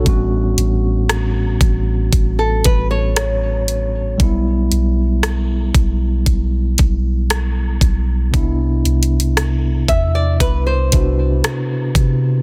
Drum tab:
HH |x--x--x--x--x--x--x--x--|x--x--x--x--x--x--x--x--|x--xxxx--x--x--x--x--x--|
SD |------r-----------r-----|------r-----------r-----|------r-----------r-----|
BD |o--------o--o--o--------|o--------o--o--o-----o--|o--------o--o--o-----o--|